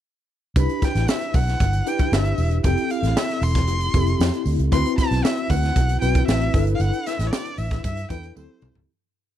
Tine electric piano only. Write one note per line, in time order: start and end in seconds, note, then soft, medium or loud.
0.56 1.45 D4 medium
0.56 1.45 E4 medium
0.56 1.45 G4 medium
0.56 1.45 B4 medium
1.86 2.53 D4 medium
1.86 2.53 E4 medium
1.86 2.53 G4 medium
1.86 2.53 B4 medium
2.64 3.53 C4 medium
2.64 3.53 E4 medium
2.64 3.53 G4 medium
2.64 3.53 A4 medium
3.94 4.61 C4 medium
3.94 4.61 E4 medium
3.94 4.61 G4 medium
3.94 4.61 A4 medium
4.72 5.61 C4 medium
4.72 5.61 E4 medium
4.72 5.61 F#4 medium
4.72 5.61 B4 medium
6.01 6.54 C4 medium
6.01 6.53 E4 medium
6.01 6.54 F#4 medium
6.01 6.53 B4 medium
6.53 7.43 D4 medium
6.53 7.43 E4 medium
6.53 7.43 A4 medium
6.53 7.43 B4 medium
8.10 8.36 D4 medium
8.10 8.35 E4 medium
8.10 8.36 A4 medium
8.10 8.37 B4 medium
8.36 8.81 C4 medium
8.36 8.81 E4 medium
8.36 8.81 G4 medium
8.36 8.81 A4 medium